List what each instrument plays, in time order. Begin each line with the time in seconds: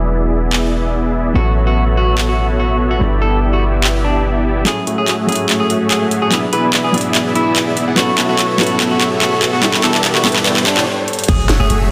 Already playing: 808-style bass E1, felt piano F#3 B3 D4 E4 G#4, supersaw synth B3 E4 G#4 D5 E5
0.53 clap
1.34 808-style bass A1, felt piano F#3 B3 C#4 E4 A4, supersaw synth B3 F#4 A4 C#5 E5, clean electric guitar F#4
1.67 clean electric guitar F#4
1.97 clean electric guitar F#4
2.18 clap
2.29 clean electric guitar F#4
2.60 clean electric guitar F#4
2.91 clean electric guitar F#4
2.99 808-style bass G1, felt piano G3 B3 D4 E4 A4, supersaw synth B3 E4 G4 D5 E5
3.22 clean electric guitar A4
3.53 clean electric guitar F#4
3.84 clap
4.04 clean electric guitar D4
4.65 felt piano F#3 A3 C#4 E4 G#4, supersaw synth A3 F#4 G#4 C#5 E5, clean electric guitar G#4, clap, closed hi-hat, riser
4.87 supersaw synth A3 F#4 G#4 C#5 E5, closed hi-hat
4.98 supersaw synth A3 F#4 G#4 C#5 E5, clean electric guitar G#4
5.08 supersaw synth A3 F#4 G#4 C#5 E5, clap, closed hi-hat
5.27 felt piano F#3 A3 C#4 E4, supersaw synth A3 F#4 G#4 C#5 E5, clean electric guitar G#4, closed hi-hat
5.31 felt piano G#4, closed hi-hat
5.36 closed hi-hat
5.49 supersaw synth A3 F#4 G#4 C#5 E5, clap, closed hi-hat
5.60 clean electric guitar G#4
5.70 supersaw synth A3 F#4 G#4 C#5 E5, closed hi-hat
5.81 supersaw synth A3 F#4 G#4 C#5 E5
5.91 clean electric guitar G#4, clap, closed hi-hat
6.01 supersaw synth A3 F#4 G#4 C#5 E5
6.11 closed hi-hat
6.22 supersaw synth A3 F#4 G#4 C#5 F#5, clean electric guitar G#4
6.30 felt piano F#3 B3 D4 E4 G#4, supersaw synth B3 E4 G#4 D5 E5, clap, closed hi-hat
6.53 supersaw synth B3 E4 G#4 D5 E5, clean electric guitar B4, closed hi-hat
6.64 supersaw synth B3 E4 G#4 D5 E5
6.73 supersaw synth B3 E4 G#4 D5 E5, clap, closed hi-hat
6.84 clean electric guitar G#4
6.92 felt piano F#3 B3 D4 E4 G#4, supersaw synth B3 E4 G#4 D5 E5, closed hi-hat
6.98 closed hi-hat
7.01 closed hi-hat
7.15 supersaw synth B3 E4 G#4 D5 E5, clap, closed hi-hat
7.35 supersaw synth B3 E4 G#4 D5 E5, clean electric guitar E4, closed hi-hat
7.46 supersaw synth B3 E4 G#4 D5 E5
7.56 clap, closed hi-hat
7.67 supersaw synth B3 E4 G#4 D5 E5
7.77 closed hi-hat
7.88 supersaw synth B3 E4 G#4 D5 F#5
7.96 felt piano F#3 B3 C#4 E4, supersaw synth B3 F#4 A4 C#5 E5, clean electric guitar F#4, clap, closed hi-hat
8.00 felt piano A4
8.18 supersaw synth B3 F#4 A4 C#5 E5, clap, closed hi-hat
8.29 supersaw synth B3 F#4 A4 C#5 E5, clean electric guitar F#4
8.39 supersaw synth B3 F#4 A4 C#5 E5, clap, closed hi-hat
8.58 felt piano F#3 B3 C#4 E4 A4, supersaw synth B3 F#4 A4 C#5 E5, clean electric guitar F#4, clap, closed hi-hat
8.63 closed hi-hat
8.67 closed hi-hat
8.80 supersaw synth B3 F#4 A4 C#5 E5, clap, closed hi-hat
8.91 clean electric guitar F#4
9.01 supersaw synth B3 F#4 A4 C#5 E5, clap, closed hi-hat
9.12 supersaw synth B3 F#4 A4 C#5 E5
9.22 clean electric guitar F#4, clap, closed hi-hat
9.32 supersaw synth B3 F#4 A4 C#5 E5
9.42 clap, closed hi-hat
9.53 supersaw synth B3 F#4 A4 C#5 F#5, clean electric guitar F#4
9.61 felt piano G3 B3 D4 E4, supersaw synth B3 E4 G4 D5 E5, clap, closed hi-hat
9.65 felt piano A4
9.74 clap
9.84 supersaw synth B3 E4 G4 D5 E5, clean electric guitar A4, clap, closed hi-hat
9.94 supersaw synth B3 E4 G4 D5 E5, clap
10.04 supersaw synth B3 E4 G4 D5 E5, clap, closed hi-hat
10.15 clean electric guitar F#4, clap
10.23 felt piano G3 B3 D4 E4 A4, supersaw synth B3 E4 G4 D5 E5, clap, closed hi-hat
10.29 closed hi-hat
10.32 clap, closed hi-hat
10.45 supersaw synth B3 E4 G4 D5 E5, clap, closed hi-hat
10.57 clap
10.66 clean electric guitar D4, clap, closed hi-hat
10.77 supersaw synth B3 E4 G4 D5 G5, clap
11.08 closed hi-hat
11.13 closed hi-hat
11.19 closed hi-hat
11.24 closed hi-hat
11.28 808-style bass F#1, supersaw synth A3 F#4 G#4 C#5 E5, clean electric guitar G#4, kick, closed hi-hat, crash, impact
11.49 808-style bass F#1, supersaw synth A3 F#4 G#4 C#5 E5, snare, closed hi-hat
11.60 808-style bass F#1, supersaw synth A3 F#4 G#4 C#5 E5, clean electric guitar G#4
11.70 808-style bass F#1, supersaw synth A3 F#4 G#4 C#5 E5, closed hi-hat